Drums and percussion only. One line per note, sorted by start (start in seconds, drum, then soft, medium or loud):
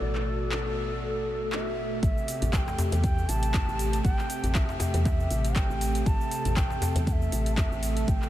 0.15 clap soft
0.52 clap loud
1.52 clap medium
2.03 kick loud
2.03 closed hi-hat soft
2.03 cabasa medium
2.18 cabasa soft
2.28 open hi-hat medium
2.28 cabasa medium
2.42 closed hi-hat medium
2.42 djembe tone medium
2.42 cabasa soft
2.53 kick loud
2.53 clap loud
2.53 closed hi-hat soft
2.53 cabasa medium
2.68 djembe slap medium
2.68 cabasa soft
2.78 open hi-hat medium
2.78 djembe slap loud
2.78 djembe bass medium
2.78 cabasa medium
2.92 closed hi-hat medium
2.92 djembe tone medium
2.92 cabasa soft
3.04 kick loud
3.04 closed hi-hat soft
3.04 cabasa medium
3.18 cabasa soft
3.29 open hi-hat medium
3.29 cabasa medium
3.43 closed hi-hat medium
3.43 cabasa soft
3.54 kick loud
3.54 clap loud
3.54 closed hi-hat soft
3.54 djembe tone medium
3.54 cabasa medium
3.69 cabasa soft
3.79 open hi-hat loud
3.79 cabasa loud
3.93 closed hi-hat medium
3.93 cabasa soft
4.05 kick loud
4.05 closed hi-hat soft
4.05 cabasa medium
4.18 clap soft
4.18 cabasa soft
4.30 open hi-hat medium
4.30 cabasa medium
4.44 closed hi-hat medium
4.44 djembe tone medium
4.44 cabasa soft
4.55 kick loud
4.55 clap loud
4.55 closed hi-hat soft
4.55 cabasa medium
4.69 djembe slap medium
4.69 cabasa soft
4.80 open hi-hat medium
4.80 djembe slap loud
4.80 djembe bass loud
4.80 cabasa medium
4.94 closed hi-hat medium
4.94 djembe tone medium
4.94 cabasa soft
5.05 kick loud
5.05 closed hi-hat soft
5.05 djembe slap medium
5.05 cabasa medium
5.20 cabasa soft
5.31 open hi-hat medium
5.31 cabasa medium
5.45 closed hi-hat medium
5.45 cabasa soft
5.56 kick loud
5.56 clap loud
5.56 closed hi-hat soft
5.56 cabasa medium
5.71 cabasa soft
5.81 open hi-hat loud
5.81 cabasa loud
5.95 closed hi-hat medium
5.95 cabasa soft
6.06 kick loud
6.06 closed hi-hat soft
6.06 cabasa medium
6.21 cabasa soft
6.31 open hi-hat medium
6.31 cabasa medium
6.45 closed hi-hat soft
6.45 djembe tone medium
6.45 cabasa soft
6.57 kick loud
6.57 clap loud
6.57 closed hi-hat soft
6.57 cabasa medium
6.70 djembe slap medium
6.70 cabasa soft
6.82 open hi-hat medium
6.82 djembe slap loud
6.82 djembe bass medium
6.82 cabasa loud
6.96 closed hi-hat medium
6.96 djembe tone medium
6.96 cabasa soft
7.07 kick loud
7.07 closed hi-hat soft
7.07 cabasa medium
7.22 cabasa soft
7.32 open hi-hat medium
7.32 cabasa loud
7.46 closed hi-hat medium
7.46 cabasa soft
7.58 kick loud
7.58 clap loud
7.58 closed hi-hat soft
7.58 djembe tone loud
7.58 cabasa medium
7.72 cabasa soft
7.83 open hi-hat medium
7.83 cabasa loud
7.97 closed hi-hat medium
7.97 cabasa soft
8.08 kick loud
8.08 closed hi-hat soft
8.08 cabasa medium
8.22 clap soft
8.22 cabasa soft